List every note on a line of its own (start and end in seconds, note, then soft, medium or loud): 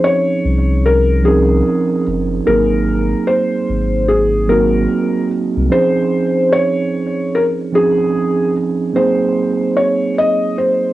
0.00 0.34 F3 medium
0.00 0.32 C4 medium
0.00 0.32 C#4 medium
0.00 0.33 D#4 medium
0.00 0.33 G#4 medium
0.04 0.87 C#5 loud
0.45 1.62 C2 loud
0.86 1.27 A#4 loud
1.23 2.04 F3 medium
1.23 2.04 C4 medium
1.23 2.05 C#4 medium
1.23 2.05 D#4 medium
1.23 2.02 G#4 medium
1.28 2.06 A#4 medium
2.07 2.40 F#1 medium
2.46 3.14 G#1 loud
2.46 3.55 F#3 medium
2.46 3.56 A#3 medium
2.46 3.56 C4 medium
2.46 3.57 D#4 medium
2.46 3.57 G#4 medium
2.46 3.30 A#4 medium
3.27 4.11 C5 loud
3.69 4.86 G#1 loud
4.08 4.50 G#4 medium
4.48 5.28 F#3 medium
4.48 5.29 A#3 medium
4.48 5.29 C4 medium
4.48 5.30 D#4 medium
4.48 5.26 A#4 medium
4.52 5.30 F#4 medium
5.57 5.69 C2 loud
5.70 6.80 F3 medium
5.70 6.80 C4 medium
5.70 6.81 C#4 medium
5.70 6.81 D#4 medium
5.70 6.82 G#4 medium
5.70 6.55 C5 loud
6.53 7.36 C#5 loud
7.35 7.44 A#4 medium
7.72 8.52 F3 medium
7.72 8.53 C4 medium
7.72 8.54 C#4 medium
7.72 8.54 D#4 medium
7.72 8.52 G#4 loud
7.76 8.55 G#4 medium
8.93 10.04 F#3 medium
8.93 10.04 A#3 medium
8.93 10.05 C4 medium
8.93 10.05 D#4 medium
8.93 9.73 C5 medium
8.97 10.06 G#4 medium
9.77 10.14 C#5 medium
10.18 10.55 D#5 loud
10.58 10.93 C5 medium